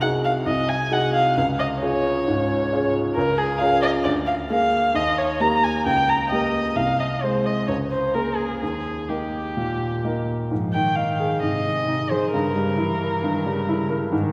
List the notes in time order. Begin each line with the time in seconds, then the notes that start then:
Already playing: C2
0.01 D#4 F#4 G#4 F#5
0.25 F5
0.46 C2 D#5
0.69 G#5
0.91 D#4 F#4 G#4 F#5
1.14 F5
1.37 C#2 F5
1.59 D#5
1.80 C#4 F4 G#4 C#5
2.28 G#2
2.73 C#4 F4 G#4
3.15 C#2 A#4
3.38 G#4
3.59 C#4 F4 G#4 F5
3.82 D#5
4.04 D2 D5
4.27 F5
4.50 A#3 G#4 A#4 F5
4.94 D#2 D#5
5.18 C#5
5.40 A#3 G4 A#4 A#5
5.64 G#5
5.86 C#2 G5
6.09 A#5
6.31 A#3 G4 A#4 D#5
6.76 C2 F5
7.00 D#5
7.23 G#3 G#4 C5
7.46 D#5
7.68 C#2 C#5
7.92 C5
8.14 A#3 G#4 A#4
8.37 G#4
8.61 D#2 G#4
9.08 A#3 D#4 G4 A#4
9.57 A#2
10.04 A#3 D#4 A#4
10.51 G#2 F3
10.73 D#3 G5
10.96 D#4 F5
11.20 G#4
11.42 G#2 C3 D#5
11.65 D#3
11.88 C3 D#4
12.11 D#3 G#4 C5
12.32 G2 C#3 A#4
12.55 C#3 G3
12.78 E3 E4
13.02 A#4
13.23 G2 D#3
13.45 C#3 G3
13.67 C#3 E4
13.89 A#4
14.11 G#2 D#3